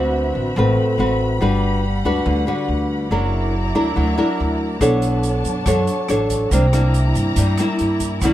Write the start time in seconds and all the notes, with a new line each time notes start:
Already playing: D2 D3 C4 F#4 B4 E5 B5
0.35 A1
0.56 A1 A2 C4 F#4 B4
0.98 A1 C4 F#4 B4
1.40 G1 G3 D4 F#4 B4 F#5
2.04 D2 D4 F#4 B4
2.26 D2 D3
2.47 D4 F#4 B4
2.68 D2
3.11 F#1 F#3 D4 E4 A#4 D5 A#5
3.75 D2 D4 E4 A#4
3.96 D2 F#3
4.17 D4 E4 A#4
4.40 D2
4.81 B1 B3 D4 A4 C#5 A5, kick, cross-stick, closed hi-hat, shaker
5.02 closed hi-hat, shaker
5.23 closed hi-hat, shaker
5.45 F#2, kick, closed hi-hat, shaker
5.66 F#2 F#3 D4 A4 C#5, kick, cross-stick, closed hi-hat, shaker
5.87 closed hi-hat, shaker
6.08 A1 D4 A4 C#5, cross-stick, closed hi-hat, shaker
6.30 kick, closed hi-hat, shaker
6.51 C2 C3 A#3 D4 E4 D5 A#5, kick, closed hi-hat, shaker
6.73 A#3 D4 E4, cross-stick, closed hi-hat, shaker
6.94 closed hi-hat, shaker
7.15 G2, kick, closed hi-hat, shaker
7.36 G2 G3, kick, closed hi-hat, shaker
7.58 A#3 D4 E4, cross-stick, closed hi-hat, shaker
7.79 G2, closed hi-hat
8.00 kick, closed hi-hat, shaker
8.21 D2 D3 F#3 C#4 E4 C#5 F#5, kick, cross-stick, closed hi-hat, shaker